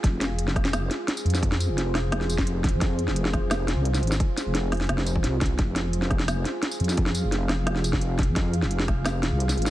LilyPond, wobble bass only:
\new Staff \with { instrumentName = "Wobble bass" } { \clef bass \time 4/4 \key f \minor \tempo 4 = 173 f,,2~ f,,8 r4 f,8~ | f,8. f,,2. f,16~ | f,8. f,,2 c,8. aes,,8 | r8. f,,4~ f,,16 f,,4 c,8 c,8 |
f,,2~ f,,8 r4 f,8~ | f,8. f,,2. f,16~ | f,8. f,,2 c,8. aes,,8 | }